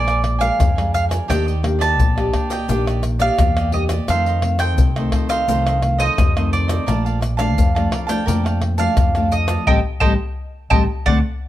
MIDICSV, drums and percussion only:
0, 0, Header, 1, 4, 480
1, 0, Start_track
1, 0, Tempo, 698487
1, 887, Time_signature, 4, 2, 24, 8
1, 7892, End_track
2, 0, Start_track
2, 0, Title_t, "Pandeiro"
2, 53, Note_on_c, 9, 54, 34
2, 121, Note_off_c, 9, 54, 0
2, 164, Note_on_c, 9, 54, 53
2, 233, Note_off_c, 9, 54, 0
2, 280, Note_on_c, 9, 54, 63
2, 348, Note_off_c, 9, 54, 0
2, 412, Note_on_c, 9, 54, 78
2, 481, Note_off_c, 9, 54, 0
2, 538, Note_on_c, 9, 54, 37
2, 606, Note_off_c, 9, 54, 0
2, 649, Note_on_c, 9, 54, 55
2, 717, Note_off_c, 9, 54, 0
2, 764, Note_on_c, 9, 54, 72
2, 833, Note_off_c, 9, 54, 0
2, 895, Note_on_c, 9, 54, 77
2, 964, Note_off_c, 9, 54, 0
2, 1017, Note_on_c, 9, 54, 34
2, 1085, Note_off_c, 9, 54, 0
2, 1128, Note_on_c, 9, 54, 62
2, 1197, Note_off_c, 9, 54, 0
2, 1246, Note_on_c, 9, 54, 57
2, 1315, Note_off_c, 9, 54, 0
2, 1371, Note_on_c, 9, 54, 77
2, 1440, Note_off_c, 9, 54, 0
2, 1495, Note_on_c, 9, 54, 30
2, 1564, Note_off_c, 9, 54, 0
2, 1605, Note_on_c, 9, 54, 54
2, 1673, Note_off_c, 9, 54, 0
2, 1720, Note_on_c, 9, 54, 64
2, 1789, Note_off_c, 9, 54, 0
2, 1849, Note_on_c, 9, 54, 78
2, 1917, Note_off_c, 9, 54, 0
2, 1975, Note_on_c, 9, 54, 35
2, 2044, Note_off_c, 9, 54, 0
2, 2082, Note_on_c, 9, 54, 53
2, 2151, Note_off_c, 9, 54, 0
2, 2197, Note_on_c, 9, 54, 62
2, 2266, Note_off_c, 9, 54, 0
2, 2326, Note_on_c, 9, 54, 76
2, 2395, Note_off_c, 9, 54, 0
2, 2451, Note_on_c, 9, 54, 37
2, 2520, Note_off_c, 9, 54, 0
2, 2558, Note_on_c, 9, 54, 53
2, 2627, Note_off_c, 9, 54, 0
2, 2674, Note_on_c, 9, 54, 68
2, 2743, Note_off_c, 9, 54, 0
2, 2805, Note_on_c, 9, 54, 71
2, 2874, Note_off_c, 9, 54, 0
2, 2930, Note_on_c, 9, 54, 33
2, 2998, Note_off_c, 9, 54, 0
2, 3039, Note_on_c, 9, 54, 61
2, 3108, Note_off_c, 9, 54, 0
2, 3153, Note_on_c, 9, 54, 58
2, 3222, Note_off_c, 9, 54, 0
2, 3284, Note_on_c, 9, 54, 78
2, 3353, Note_off_c, 9, 54, 0
2, 3410, Note_on_c, 9, 54, 30
2, 3479, Note_off_c, 9, 54, 0
2, 3520, Note_on_c, 9, 54, 65
2, 3588, Note_off_c, 9, 54, 0
2, 3637, Note_on_c, 9, 54, 64
2, 3706, Note_off_c, 9, 54, 0
2, 3769, Note_on_c, 9, 54, 85
2, 3838, Note_off_c, 9, 54, 0
2, 3893, Note_on_c, 9, 54, 34
2, 3962, Note_off_c, 9, 54, 0
2, 4002, Note_on_c, 9, 54, 50
2, 4071, Note_off_c, 9, 54, 0
2, 4120, Note_on_c, 9, 54, 68
2, 4189, Note_off_c, 9, 54, 0
2, 4248, Note_on_c, 9, 54, 83
2, 4317, Note_off_c, 9, 54, 0
2, 4376, Note_on_c, 9, 54, 35
2, 4444, Note_off_c, 9, 54, 0
2, 4489, Note_on_c, 9, 54, 53
2, 4558, Note_off_c, 9, 54, 0
2, 4600, Note_on_c, 9, 54, 73
2, 4669, Note_off_c, 9, 54, 0
2, 4727, Note_on_c, 9, 54, 73
2, 4796, Note_off_c, 9, 54, 0
2, 4852, Note_on_c, 9, 54, 33
2, 4921, Note_off_c, 9, 54, 0
2, 4964, Note_on_c, 9, 54, 60
2, 5033, Note_off_c, 9, 54, 0
2, 5077, Note_on_c, 9, 54, 61
2, 5146, Note_off_c, 9, 54, 0
2, 5210, Note_on_c, 9, 54, 70
2, 5279, Note_off_c, 9, 54, 0
2, 5335, Note_on_c, 9, 54, 36
2, 5404, Note_off_c, 9, 54, 0
2, 5443, Note_on_c, 9, 54, 60
2, 5512, Note_off_c, 9, 54, 0
2, 5559, Note_on_c, 9, 54, 69
2, 5628, Note_off_c, 9, 54, 0
2, 5691, Note_on_c, 9, 54, 90
2, 5760, Note_off_c, 9, 54, 0
2, 5813, Note_on_c, 9, 54, 35
2, 5882, Note_off_c, 9, 54, 0
2, 5921, Note_on_c, 9, 54, 56
2, 5989, Note_off_c, 9, 54, 0
2, 6034, Note_on_c, 9, 54, 59
2, 6103, Note_off_c, 9, 54, 0
2, 6163, Note_on_c, 9, 54, 77
2, 6232, Note_off_c, 9, 54, 0
2, 6287, Note_on_c, 9, 54, 35
2, 6356, Note_off_c, 9, 54, 0
2, 6402, Note_on_c, 9, 54, 54
2, 6471, Note_off_c, 9, 54, 0
2, 6514, Note_on_c, 9, 54, 70
2, 6583, Note_off_c, 9, 54, 0
2, 7892, End_track
3, 0, Start_track
3, 0, Title_t, "Tamborim"
3, 53, Note_on_c, 9, 60, 75
3, 121, Note_off_c, 9, 60, 0
3, 164, Note_on_c, 9, 60, 74
3, 233, Note_off_c, 9, 60, 0
3, 412, Note_on_c, 9, 60, 74
3, 481, Note_off_c, 9, 60, 0
3, 538, Note_on_c, 9, 60, 81
3, 606, Note_off_c, 9, 60, 0
3, 764, Note_on_c, 9, 60, 77
3, 833, Note_off_c, 9, 60, 0
3, 895, Note_on_c, 9, 60, 78
3, 964, Note_off_c, 9, 60, 0
3, 1128, Note_on_c, 9, 60, 82
3, 1197, Note_off_c, 9, 60, 0
3, 1246, Note_on_c, 9, 60, 70
3, 1315, Note_off_c, 9, 60, 0
3, 1495, Note_on_c, 9, 60, 75
3, 1564, Note_off_c, 9, 60, 0
3, 1605, Note_on_c, 9, 60, 84
3, 1673, Note_off_c, 9, 60, 0
3, 1975, Note_on_c, 9, 60, 79
3, 2044, Note_off_c, 9, 60, 0
3, 2082, Note_on_c, 9, 60, 64
3, 2151, Note_off_c, 9, 60, 0
3, 2326, Note_on_c, 9, 60, 83
3, 2395, Note_off_c, 9, 60, 0
3, 2451, Note_on_c, 9, 60, 87
3, 2520, Note_off_c, 9, 60, 0
3, 2674, Note_on_c, 9, 60, 77
3, 2743, Note_off_c, 9, 60, 0
3, 2805, Note_on_c, 9, 60, 78
3, 2874, Note_off_c, 9, 60, 0
3, 3039, Note_on_c, 9, 60, 77
3, 3108, Note_off_c, 9, 60, 0
3, 3153, Note_on_c, 9, 60, 76
3, 3222, Note_off_c, 9, 60, 0
3, 3410, Note_on_c, 9, 60, 77
3, 3479, Note_off_c, 9, 60, 0
3, 3520, Note_on_c, 9, 60, 82
3, 3588, Note_off_c, 9, 60, 0
3, 3893, Note_on_c, 9, 60, 82
3, 3962, Note_off_c, 9, 60, 0
3, 4002, Note_on_c, 9, 60, 71
3, 4071, Note_off_c, 9, 60, 0
3, 4248, Note_on_c, 9, 60, 83
3, 4317, Note_off_c, 9, 60, 0
3, 4376, Note_on_c, 9, 60, 85
3, 4444, Note_off_c, 9, 60, 0
3, 4600, Note_on_c, 9, 60, 78
3, 4669, Note_off_c, 9, 60, 0
3, 4727, Note_on_c, 9, 60, 74
3, 4796, Note_off_c, 9, 60, 0
3, 4964, Note_on_c, 9, 60, 78
3, 5033, Note_off_c, 9, 60, 0
3, 5077, Note_on_c, 9, 60, 75
3, 5146, Note_off_c, 9, 60, 0
3, 5335, Note_on_c, 9, 60, 81
3, 5404, Note_off_c, 9, 60, 0
3, 5443, Note_on_c, 9, 60, 88
3, 5512, Note_off_c, 9, 60, 0
3, 5813, Note_on_c, 9, 60, 78
3, 5882, Note_off_c, 9, 60, 0
3, 5921, Note_on_c, 9, 60, 70
3, 5989, Note_off_c, 9, 60, 0
3, 6163, Note_on_c, 9, 60, 78
3, 6232, Note_off_c, 9, 60, 0
3, 6287, Note_on_c, 9, 60, 81
3, 6356, Note_off_c, 9, 60, 0
3, 6514, Note_on_c, 9, 60, 85
3, 6583, Note_off_c, 9, 60, 0
3, 7892, End_track
4, 0, Start_track
4, 0, Title_t, "Drums"
4, 53, Note_on_c, 9, 82, 34
4, 121, Note_off_c, 9, 82, 0
4, 280, Note_on_c, 9, 82, 77
4, 348, Note_off_c, 9, 82, 0
4, 412, Note_on_c, 9, 82, 69
4, 412, Note_on_c, 9, 87, 92
4, 481, Note_off_c, 9, 82, 0
4, 481, Note_off_c, 9, 87, 0
4, 538, Note_on_c, 9, 82, 33
4, 606, Note_off_c, 9, 82, 0
4, 649, Note_on_c, 9, 82, 67
4, 717, Note_off_c, 9, 82, 0
4, 764, Note_on_c, 9, 82, 83
4, 833, Note_off_c, 9, 82, 0
4, 895, Note_on_c, 9, 82, 85
4, 895, Note_on_c, 9, 87, 56
4, 964, Note_off_c, 9, 82, 0
4, 964, Note_off_c, 9, 87, 0
4, 1017, Note_on_c, 9, 82, 35
4, 1085, Note_off_c, 9, 82, 0
4, 1246, Note_on_c, 9, 82, 71
4, 1315, Note_off_c, 9, 82, 0
4, 1371, Note_on_c, 9, 82, 78
4, 1371, Note_on_c, 9, 87, 91
4, 1440, Note_off_c, 9, 82, 0
4, 1440, Note_off_c, 9, 87, 0
4, 1495, Note_on_c, 9, 82, 34
4, 1564, Note_off_c, 9, 82, 0
4, 1605, Note_on_c, 9, 87, 71
4, 1673, Note_off_c, 9, 87, 0
4, 1720, Note_on_c, 9, 82, 76
4, 1789, Note_off_c, 9, 82, 0
4, 1849, Note_on_c, 9, 82, 91
4, 1849, Note_on_c, 9, 87, 61
4, 1917, Note_off_c, 9, 82, 0
4, 1917, Note_off_c, 9, 87, 0
4, 1975, Note_on_c, 9, 82, 34
4, 2044, Note_off_c, 9, 82, 0
4, 2082, Note_on_c, 9, 82, 68
4, 2151, Note_off_c, 9, 82, 0
4, 2197, Note_on_c, 9, 82, 74
4, 2266, Note_off_c, 9, 82, 0
4, 2326, Note_on_c, 9, 82, 78
4, 2326, Note_on_c, 9, 87, 84
4, 2395, Note_off_c, 9, 82, 0
4, 2395, Note_off_c, 9, 87, 0
4, 2451, Note_on_c, 9, 82, 37
4, 2520, Note_off_c, 9, 82, 0
4, 2674, Note_on_c, 9, 82, 76
4, 2743, Note_off_c, 9, 82, 0
4, 2805, Note_on_c, 9, 82, 83
4, 2805, Note_on_c, 9, 87, 55
4, 2874, Note_off_c, 9, 82, 0
4, 2874, Note_off_c, 9, 87, 0
4, 2930, Note_on_c, 9, 82, 36
4, 2998, Note_off_c, 9, 82, 0
4, 3153, Note_on_c, 9, 82, 79
4, 3222, Note_off_c, 9, 82, 0
4, 3284, Note_on_c, 9, 82, 69
4, 3284, Note_on_c, 9, 87, 94
4, 3353, Note_off_c, 9, 82, 0
4, 3353, Note_off_c, 9, 87, 0
4, 3410, Note_on_c, 9, 82, 32
4, 3479, Note_off_c, 9, 82, 0
4, 3520, Note_on_c, 9, 87, 66
4, 3588, Note_off_c, 9, 87, 0
4, 3637, Note_on_c, 9, 82, 82
4, 3706, Note_off_c, 9, 82, 0
4, 3769, Note_on_c, 9, 82, 90
4, 3769, Note_on_c, 9, 87, 63
4, 3838, Note_off_c, 9, 82, 0
4, 3838, Note_off_c, 9, 87, 0
4, 3893, Note_on_c, 9, 82, 36
4, 3962, Note_off_c, 9, 82, 0
4, 4120, Note_on_c, 9, 82, 73
4, 4189, Note_off_c, 9, 82, 0
4, 4248, Note_on_c, 9, 82, 79
4, 4248, Note_on_c, 9, 87, 97
4, 4317, Note_off_c, 9, 82, 0
4, 4317, Note_off_c, 9, 87, 0
4, 4376, Note_on_c, 9, 82, 35
4, 4444, Note_off_c, 9, 82, 0
4, 4489, Note_on_c, 9, 82, 66
4, 4558, Note_off_c, 9, 82, 0
4, 4600, Note_on_c, 9, 82, 86
4, 4669, Note_off_c, 9, 82, 0
4, 4727, Note_on_c, 9, 82, 76
4, 4727, Note_on_c, 9, 87, 55
4, 4796, Note_off_c, 9, 82, 0
4, 4796, Note_off_c, 9, 87, 0
4, 4852, Note_on_c, 9, 82, 35
4, 4921, Note_off_c, 9, 82, 0
4, 4964, Note_on_c, 9, 82, 72
4, 5033, Note_off_c, 9, 82, 0
4, 5077, Note_on_c, 9, 82, 83
4, 5146, Note_off_c, 9, 82, 0
4, 5210, Note_on_c, 9, 82, 79
4, 5210, Note_on_c, 9, 87, 83
4, 5279, Note_off_c, 9, 82, 0
4, 5279, Note_off_c, 9, 87, 0
4, 5335, Note_on_c, 9, 82, 34
4, 5404, Note_off_c, 9, 82, 0
4, 5559, Note_on_c, 9, 82, 82
4, 5628, Note_off_c, 9, 82, 0
4, 5691, Note_on_c, 9, 82, 91
4, 5691, Note_on_c, 9, 87, 66
4, 5760, Note_off_c, 9, 82, 0
4, 5760, Note_off_c, 9, 87, 0
4, 5813, Note_on_c, 9, 82, 32
4, 5882, Note_off_c, 9, 82, 0
4, 6034, Note_on_c, 9, 82, 67
4, 6103, Note_off_c, 9, 82, 0
4, 6163, Note_on_c, 9, 82, 74
4, 6163, Note_on_c, 9, 87, 93
4, 6232, Note_off_c, 9, 82, 0
4, 6232, Note_off_c, 9, 87, 0
4, 6287, Note_on_c, 9, 82, 34
4, 6356, Note_off_c, 9, 82, 0
4, 6402, Note_on_c, 9, 82, 70
4, 6471, Note_off_c, 9, 82, 0
4, 6514, Note_on_c, 9, 82, 84
4, 6583, Note_off_c, 9, 82, 0
4, 6647, Note_on_c, 9, 87, 94
4, 6716, Note_off_c, 9, 87, 0
4, 6881, Note_on_c, 9, 87, 90
4, 6949, Note_off_c, 9, 87, 0
4, 7360, Note_on_c, 9, 87, 97
4, 7429, Note_off_c, 9, 87, 0
4, 7604, Note_on_c, 9, 87, 96
4, 7672, Note_off_c, 9, 87, 0
4, 7892, End_track
0, 0, End_of_file